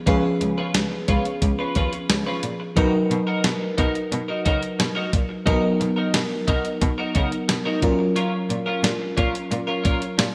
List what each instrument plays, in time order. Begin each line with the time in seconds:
0.06 cello C#2, fm electric piano F3 C#4 G#4 B4, clean electric guitar C#4 F4 B4, kick, closed hi-hat
0.24 muted clean electric guitar stroke
0.41 cello C#2, muted clean electric guitar stroke, closed hi-hat
0.58 clean electric guitar C#4 F4 B4
0.74 cello C#2, muted clean electric guitar stroke, snare, closed hi-hat
0.92 muted clean electric guitar stroke
1.08 cello C#2, clean electric guitar C#4 F4 B4, kick, closed hi-hat
1.25 muted clean electric guitar stroke, closed hi-hat
1.42 cello C#2, muted clean electric guitar stroke, kick, closed hi-hat
1.59 clean electric guitar C#4 F4 B4
1.75 cello D#2, clean electric guitar C#4 F4 B4, kick, closed hi-hat
1.93 muted clean electric guitar stroke, closed hi-hat
2.09 cello C#2, muted clean electric guitar stroke, snare, closed hi-hat
2.27 clean electric guitar C#4 F4 B4
2.43 cello A#2, muted clean electric guitar stroke, closed hi-hat
2.60 muted clean electric guitar stroke
2.76 cello B2, fm electric piano F#3 D#4 A#4 B4, clean electric guitar D#4 F#4 A#4, kick, closed hi-hat
2.93 muted clean electric guitar stroke
3.10 cello B2, muted clean electric guitar stroke, closed hi-hat
3.27 clean electric guitar D#4 F#4 A#4
3.44 cello B2, snare, closed hi-hat
3.61 muted clean electric guitar stroke
3.78 cello B2, clean electric guitar D#4 F#4 A#4, kick, closed hi-hat
3.95 muted clean electric guitar stroke, closed hi-hat
4.12 cello B2, muted clean electric guitar stroke, closed hi-hat
4.28 clean electric guitar D#4 F#4 A#4
4.45 cello C#3, clean electric guitar D#4 F#4 A#4, kick, closed hi-hat
4.62 muted clean electric guitar stroke, closed hi-hat
4.79 cello B2, muted clean electric guitar stroke, snare, closed hi-hat
4.95 clean electric guitar D#4 F#4 A#4
5.12 cello A#2, muted clean electric guitar stroke, kick, closed hi-hat
5.29 muted clean electric guitar stroke
5.46 cello B2, fm electric piano F#3 B3 D#4 A#4, clean electric guitar D#4 F#4 A#4, kick, closed hi-hat
5.63 muted clean electric guitar stroke
5.80 cello B2, muted clean electric guitar stroke, closed hi-hat
5.96 clean electric guitar D#4 F#4 A#4
6.14 cello B2, muted clean electric guitar stroke, snare, closed hi-hat
6.30 muted clean electric guitar stroke
6.47 cello B2, clean electric guitar D#4 F#4 A#4, kick, closed hi-hat
6.64 muted clean electric guitar stroke, closed hi-hat
6.81 cello B2, muted clean electric guitar stroke, kick, closed hi-hat
6.98 clean electric guitar D#4 F#4 A#4
7.14 cello C#3, clean electric guitar D#4 F#4 A#4, kick, closed hi-hat
7.32 muted clean electric guitar stroke, closed hi-hat
7.48 cello B2, muted clean electric guitar stroke, snare, closed hi-hat
7.65 clean electric guitar D#4 F#4 A#4
7.82 cello A#2, fm electric piano F#3 C#4 F4 A#4, muted clean electric guitar stroke, kick, closed hi-hat
7.99 muted clean electric guitar stroke
8.16 clean electric guitar C#4 F4 A#4, closed hi-hat
8.33 muted clean electric guitar stroke
8.49 cello A#2, muted clean electric guitar stroke, closed hi-hat
8.66 clean electric guitar C#4 F4 A#4
8.83 cello A#2, muted clean electric guitar stroke, snare, closed hi-hat
9.00 muted clean electric guitar stroke
9.17 cello A#2, clean electric guitar C#4 F4 A#4, kick, closed hi-hat
9.34 muted clean electric guitar stroke, closed hi-hat
9.51 cello A#2, muted clean electric guitar stroke, closed hi-hat
9.67 clean electric guitar C#4 F4 A#4
9.84 cello A#2, clean electric guitar C#4 F4 A#4, kick, closed hi-hat
10.01 muted clean electric guitar stroke, closed hi-hat
10.18 cello A#2, muted clean electric guitar stroke, snare, closed hi-hat